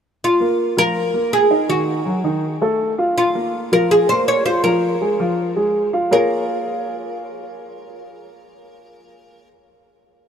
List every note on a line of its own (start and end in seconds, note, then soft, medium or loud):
0.24 0.75 F4 medium
0.40 0.71 A#3 medium
0.40 0.71 A#4 medium
0.77 1.07 F3 medium
0.77 1.07 F4 medium
0.77 1.33 A#4 loud
1.14 1.44 A#3 medium
1.14 1.44 A#4 medium
1.33 1.69 G#4 medium
1.50 1.66 D#4 medium
1.50 1.66 D#5 medium
1.69 1.99 D#3 medium
1.69 1.99 D#4 medium
1.69 2.21 F#4 medium
2.05 2.21 F#3 medium
2.05 2.21 F#4 medium
2.24 2.55 D#3 medium
2.24 2.55 D#4 medium
2.61 2.92 A3 medium
2.61 2.92 A4 medium
2.98 3.29 F4 medium
2.98 3.29 F5 medium
3.18 3.52 F4 medium
3.35 3.65 A#3 medium
3.35 3.66 A#4 medium
3.72 4.02 F3 medium
3.72 4.03 F4 medium
3.72 3.91 A#4 medium
3.91 4.09 G#4 medium
4.09 4.40 A#3 medium
4.09 4.40 A#4 medium
4.09 4.28 C5 loud
4.28 4.45 C#5 medium
4.46 4.61 F4 medium
4.46 4.63 C5 medium
4.46 4.61 F5 medium
4.64 4.95 F3 medium
4.64 4.95 F4 medium
4.64 5.89 A#4 medium
5.01 5.16 G#3 medium
5.01 5.17 G#4 medium
5.20 5.50 F3 medium
5.20 5.50 F4 medium
5.56 5.87 G#3 medium
5.56 5.87 G#4 medium
5.93 6.08 F4 medium
5.93 6.09 F5 medium
6.11 9.46 A#3 medium
6.11 9.47 F4 medium
6.11 9.47 G#4 medium
6.11 9.47 A#4 medium
6.11 9.48 A#4 medium
6.11 9.47 C#5 medium
6.11 9.47 F5 medium